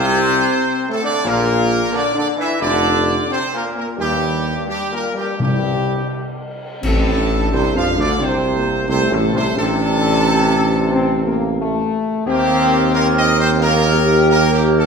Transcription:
Already playing: C2 C3 C4 C5
0.88 A2 A3 A4
1.01 D3 D4 D5
1.24 A#1 A#2 A#3 A#4
1.92 D3 D4 D5
2.14 D3 D4 D5
2.36 E3 E4
2.41 E5
2.60 F1 D3 D4 D5
3.28 C3 C4 C5
3.53 A#2 A#3 A#4
3.74 A#2 A#3 A#4
3.97 D#2 G2 G3 G4
4.66 G2 G3 G4
4.90 A#2 A#3 A#4
5.14 G2 G3 G4
5.38 C2 G2 C3 G3 G4
6.82 A1 A2 C4 A4, concert bass drum, crash
7.17 D4
7.52 C2 C3 C5
7.75 F2 F3 F5
7.98 D2 D3 D5
8.20 C2 C3 C4 C5
8.57 A#3
8.88 C2 C3 A3 C5
9.10 A1 A2 A4
9.34 C2 C3 C5
9.56 A1 C3 D4 A4
10.25 C4
10.58 D4
10.91 C4
11.26 A#3
11.61 A3
12.26 D#2 D#3 A#3 C4 G4
12.93 D#3 A#3 A#4
13.17 D#5
13.40 C5
13.61 D#3 A#3 A#4
13.93 G4
14.29 D#3 A#3 A#4
14.53 G4
14.78 A4

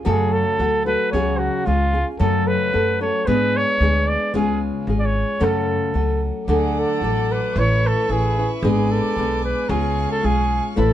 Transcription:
0.05 F#2 C#3 F#3 A3 F#4 G#4 A4
0.33 A4
0.59 D2 F#3 A3 F#4 A4
0.86 F#3 A3 F#4 A4 B4
1.12 C#2 C#3 F#3 C#4 F#4 G#4 C#5
1.38 F#4
1.66 C#2 G#3 C#4 F4 G#4
1.93 C#4 F4 G#4
2.19 F#2 C#3 F#3 A3 C#4 A4
2.47 B4
2.72 F#2 F#3 A3 C#4 A4
3.01 F#3 A3 C#4 A4 C#5
3.26 G#2 G#3 B3 D4 G#4 B4
3.57 C#5
3.80 D2 G#3 B3 D4 G#4
4.08 D5
4.34 C#2 C#3 G#3 C#4 F4 G#4
4.87 G#1 G#3 C#4 F4 G#4
5.00 D5
5.06 C#5
5.40 F#2 C#3 F#3 A3 C#4 A4
5.44 A4
5.94 C#2 F#3 A3 C#4 A4
6.48 D2 D3 F#3 A3 D4 G#4 A4 F#5 D6
6.79 A4
7.01 A1 F#3 A3 D4 A4
7.32 B4
7.54 A1 A3 C#4 E4 B4 E5 C#6
7.59 C#5
7.87 A4
8.09 A1 A3 C#4 E4 G#4 B4
8.38 C#4 E4 B4
8.63 G#1 G#3 B3 D4 G#4 G#5 D6
8.91 A4
9.16 B1 G#3 B3 D4 G#4
9.45 B4
9.67 C#2 C#3 G#3 C#4 F4 G#4 F5 C#6
10.11 A4
10.23 B1 G#3 C#4 F4 G#4
10.76 A1 A3 C#4 E4 A4 B4 C#5 B5

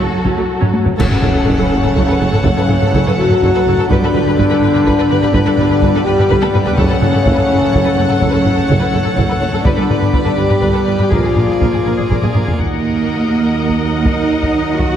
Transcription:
Already playing: C#3 F#3 A3 F#4 A4
0.00 F#1 F#2
0.12 F#2 F#3
0.24 F#1 F#2 F#3 C#4 F#4, taiko
0.36 F#2 F#3 A3
0.60 F#2 F#3 C#4, taiko low-mid
0.73 taiko high
0.85 F#2 F#3, taiko low
0.96 F#1 F#2 C#3 A3 C#4 A4 C#5 F#5, concert bass drum, taiko, crash
1.01 C#5
1.09 F#2 A4 B4, taiko low-mid
1.21 F#1 F#2 A4 C#5, taiko low-mid
1.33 F#2 A4, taiko low-mid
1.37 A4
1.45 F#1 F#2 A4, taiko
1.51 C#5
1.57 F#2 A4, taiko low-mid
1.62 B4
1.70 F#1 F#2 A4
1.74 C#5
1.83 F#2 A4, taiko low-mid
1.94 F#1 F#2 A4 C#5, taiko
2.08 F#2 A4 B4
2.20 F#1 F#2 A4 C#5
2.32 F#2 A4, taiko low-mid
2.43 F#1 F#2 C#3 C#4 A4 C#5, taiko
2.56 F#2 A4 B4, taiko low-mid
2.68 F#1 F#2 A4 C#5, taiko low-mid
2.81 F#2 A4, taiko low-mid
2.93 F#1 F#2 A4 C#5, taiko
3.05 F#2 A4 B4, taiko low-mid
3.18 F#1 F#2 F#3 F#4 A4 C#5
3.29 F#2 A4, taiko low-mid
3.42 F#1 F#2 A4 C#5, taiko
3.54 F#2 A4 B4
3.66 F#1 F#2 A4 C#5
3.77 F#2 A4, taiko low-mid
3.89 G1 G2 D3 B3 D4 G4 B4 D5, taiko
4.01 G2 A4 B4, taiko low-mid
4.14 G1 G2 B4, taiko low-mid
4.26 G2 G4 B4, taiko low-mid
4.37 G1 G2 B4, taiko
4.50 G2 A4 B4, taiko low-mid
4.60 G1 G2 B4
4.74 G2 G4 B4, taiko low-mid
4.84 G1 G2 B4, taiko
4.98 G2 A4 B4
5.09 G1 G2 B4
5.21 G2 G4 B4, taiko low-mid
5.32 G1 G2 D3 D4 B4, taiko
5.44 G2 A4 B4, taiko low-mid
5.57 G1 G2 B4, taiko low-mid
5.69 G2 G4 B4, taiko low-mid
5.81 G1 G2 B4, taiko
5.94 G2 A4 B4, taiko low-mid
6.05 G1 G2 G3 G4 B4
6.18 G2 G4 B4, taiko low-mid
6.29 G1 G2 B4, taiko
6.41 G2 A4 B4, taiko high
6.53 G1 G2 B4, taiko low-mid
6.65 G2 G4 B4, taiko low
6.76 F#1 F#2 C#3 A3 C#4 A4 C#5 F#5, taiko
6.88 F#2 A4 B4, taiko low-mid
6.99 F#1 F#2 A4 C#5, taiko low-mid
7.10 F#2 A4
7.14 A4, taiko low-mid
7.22 F#2 A4 C#5, taiko
7.26 F#1
7.33 B4
7.37 F#2 A4, taiko low-mid
7.46 F#2 C#5
7.50 F#1 A4
7.57 A4
7.61 F#2 A4, taiko low-mid
7.69 F#2 C#5
7.74 F#1 A4, taiko
7.83 F#2 A4 B4
7.95 F#1 F#2 A4 C#5
8.08 F#2 A4, taiko low-mid
8.18 F#1 F#2 C#4 C#5, taiko
8.22 F#1 C#3 A4
8.30 F#2 B4
8.34 A4, taiko low-mid
8.41 F#2 C#5
8.45 F#1 A4, taiko low-mid
8.54 F#2 A4, taiko low-mid
8.67 F#1 F#2 A4 C#5, taiko
8.79 F#2 A4 B4, taiko low-mid
8.91 F#1 F#2 A4 C#5
9.02 F#2 A4, taiko low-mid
9.14 F#1 F#2 A4 C#5, taiko
9.27 F#2 A4 B4
9.40 F#1 F#2 A4 C#5
9.52 F#2 A4, taiko low-mid
9.64 G1 G2 D3 B3 D4 G4 B4 D5, taiko
9.76 G2 A4 B4, taiko low-mid
9.88 G1 G2 B4, taiko low-mid
10.00 G2 G4 B4, taiko low-mid
10.13 G1 G2 B4, taiko
10.24 G2 A4 B4, taiko low-mid
10.36 G1 G2 G3 G4 B4
10.48 G2 G4 B4, taiko low-mid
10.61 G1 G2 B4, taiko
10.73 G2 A4 B4
10.86 G1 G2 B4
10.98 G2 G4 B4, taiko low-mid
11.10 A#1 A#2 F3 A#3 F4 G#4 A#4, taiko
11.23 A#2 G#4, taiko low-mid
11.34 A#1 A#2 G#4 A#4, taiko low-mid
11.46 A#2 G#4, taiko low-mid
11.60 A#1 A#2 G#4 A#4, taiko
11.71 A#2 G#4, taiko low-mid
11.83 A#1 A#2 G#4 A#4
11.97 A#2 G#4, taiko low-mid
12.09 A#1 A#2 G#4 A#4, taiko
12.21 A#2 G#4, taiko low-mid
12.33 A#1 A#2 G#4 A#4, taiko low-mid
12.45 A#2 G#4, taiko low
12.57 D#2 D#3 F#3 A#3 F#4 A#4 D#5 F#5, taiko
13.69 taiko
14.04 D#4 D#5, taiko
14.42 taiko
14.78 F#4 F#5, taiko

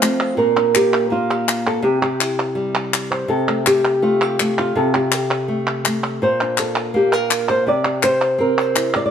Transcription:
0.01 F3 A3 C4 F4, clap
0.20 clap
0.37 A#2 A#3 D4 A#4
0.56 D4, clap
0.75 G4, clap
0.93 clap
1.10 A#3 F4
1.30 G4, clap
1.48 clap
1.67 A4, clap
1.82 C3 G4
2.02 G4, clap
2.21 E4, clap
2.55 G3
2.75 clap
2.94 clap
3.11 C5, clap
3.28 C3 A4
3.48 A3, clap
3.66 G4, clap
4.02 A3 F4
4.21 G4, clap
4.40 A3, clap
4.58 F4, clap
4.75 C3 A4
4.94 G4, clap
5.12 A4, clap
5.31 clap
5.48 A3
5.67 clap
5.85 A3, clap
6.04 clap
6.22 A#2 C5
6.41 D4, clap
6.58 A4, clap
6.76 clap
6.94 A#3 G4
7.13 A#4
7.31 clap
7.50 C5
7.67 C3 D5
7.85 G4, clap
8.03 C5, clap
8.21 clap
8.38 C4 A#4
8.58 C5, clap
8.76 E4, clap
8.94 D5, clap
9.06 D5

